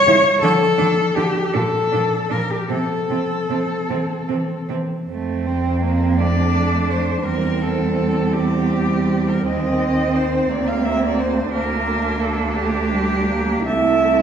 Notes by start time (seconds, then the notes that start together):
Already playing: C#5
0.07 C#3 G3 E4
0.41 D3 F3 D4 A4
0.78 D3 F3 D4
1.16 D3 F3 D4 G4
1.53 A#2 F3 D4 A4
1.92 A#2 F3 D4
2.30 A#2 F3 D4 A#4
2.50 G4
2.69 C3 F3 C4 A4
3.10 C3 F3 C4
3.49 C3 F3 C4
3.89 C3 E3 C4
4.28 C3 C4
4.32 E3
4.69 C3 E3 C4
5.08 F2 A3 C4
5.47 C4
5.84 A#3
6.18 A3 D4 D5
6.90 C5
7.24 E2 G3 C4 A#4
7.62 A4
8.33 G4
9.28 A#4
9.45 D#2 C4 D#5
10.16 C5
10.50 D2 A#3 D5
10.68 F5
10.85 E5
11.05 D5
11.21 C5
11.51 D2 A#3 D4 A#4
12.21 A4
12.55 A3 G4
12.91 G3
13.30 A#3
13.66 C2 A3 E4 E5